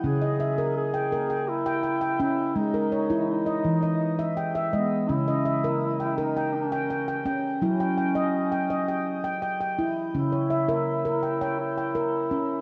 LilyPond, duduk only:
\new Staff \with { instrumentName = "Duduk" } { \time 7/8 \tempo 4 = 83 gis'4 gis'4 e'4 e'8 | dis'4 dis'4. r8 b8 | e'4. dis'8 cis'4 r8 | cis'2~ cis'8 r4 |
e'2 e'4. | }